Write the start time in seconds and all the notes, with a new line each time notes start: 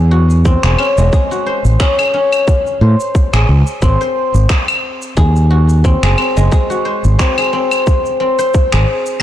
Already playing: E2 C#4 G#4 C#5
0.11 F#4
0.31 shaker
0.45 C4, kick, shaker
0.63 E1 G#4, finger snap, shaker
0.79 C#4, claves
0.98 E1 G#3, shaker
1.13 G#4, kick, shaker
1.31 F#4, shaker
1.46 C5
1.65 A1, shaker
1.80 C#4, finger snap, kick, shaker
1.99 G#4, claves, shaker
2.14 C#4
2.32 claves, shaker
2.48 kick, shaker
2.67 shaker
2.81 A2 C5
3.00 shaker
3.15 kick, shaker
3.33 A1 G#4, finger snap, shaker
3.49 C#2
3.67 shaker
3.82 G#1 C4, kick, shaker
4.01 C5, shaker
4.34 G#1, shaker
4.49 finger snap, kick, shaker
4.68 claves, shaker
5.02 shaker
5.17 D#2 G#4, kick, shaker
5.36 shaker
5.51 F#4
5.69 shaker
5.84 C4, kick, shaker
6.03 F#1 G#4, finger snap, shaker
6.18 C4, claves
6.37 F#1 G#3, shaker
6.51 G#4, kick, shaker
6.70 F#4, shaker
6.85 C5
7.05 G#1, shaker
7.19 C4, finger snap, kick, shaker
7.38 G#4, claves, shaker
7.53 C4
7.71 claves, shaker
7.87 kick, shaker
8.06 shaker
8.20 C4
8.39 C5, shaker
8.54 kick, shaker
8.72 G#1 G#4, finger snap, shaker
9.06 shaker